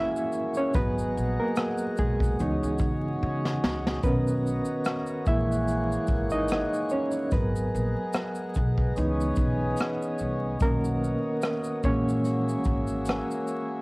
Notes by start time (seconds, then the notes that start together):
Already playing: E3 G#3 A#3 C#4 E4 F#4 G#4 C#5 E5
0.16 shaker
0.32 shaker
0.54 C#5, shaker
0.58 C#4
0.74 G#1 F#3 G#3 B3 F#4 B4 F#5 A#5, kick, closed hi-hat, shaker
0.99 shaker
1.17 A#1, shaker
1.40 A#3 A#4
1.56 cross-stick, closed hi-hat, shaker
1.78 shaker
1.97 B1 G#3 G#4, kick, shaker
2.20 kick, shaker
2.38 C#2 E3 B3 C#4 D#4 C#5 D#5, closed hi-hat, shaker
2.63 C#2, shaker
2.78 C#3, kick, shaker
3.23 C#3
3.45 snare
3.63 C#2, snare
3.87 snare
4.03 B1 D#3 B3 C#4 F#4 A#4 B4 C#5 D#5 A#5, kick, closed hi-hat, shaker
4.28 shaker
4.47 shaker
4.65 shaker
4.85 cross-stick, closed hi-hat, shaker
5.06 shaker
5.26 A#1 E3 G#3 A#3 E4 G#4 E5 F#5, kick, shaker
5.52 shaker
5.68 closed hi-hat, shaker
5.92 shaker
6.07 G#1, kick, shaker
6.30 D#4 D#5, shaker
6.48 cross-stick, closed hi-hat, shaker
6.74 shaker
6.89 C#4 C#5, shaker
7.12 shaker
7.31 G#1 F#3 G#3 B3 A#4 B4 A#5, kick, closed hi-hat, shaker
7.56 shaker
7.75 A#1, shaker
8.13 cross-stick, closed hi-hat, shaker
8.35 shaker
8.54 B1, kick, shaker
8.78 kick
8.96 C#2 E3 B3 C#4 D#4 C#5 D#5, closed hi-hat, shaker
9.21 shaker
9.36 B1, kick, shaker
9.77 cross-stick, closed hi-hat, shaker
10.02 shaker
10.19 C2, shaker
10.60 B1 B2 D#3 A#3 C#4 F#4 A#4 C#5, kick, closed hi-hat, shaker
10.84 shaker
11.04 shaker
11.42 cross-stick, closed hi-hat, shaker
11.64 shaker
11.82 A#1 E3 G#3 A#3 C#4 F#4 G#4 C#5 E5, kick, shaker
12.09 shaker
12.25 closed hi-hat, shaker
12.49 shaker
12.64 G#1, kick, shaker
12.87 shaker
13.06 cross-stick, closed hi-hat, shaker
13.31 shaker
13.47 shaker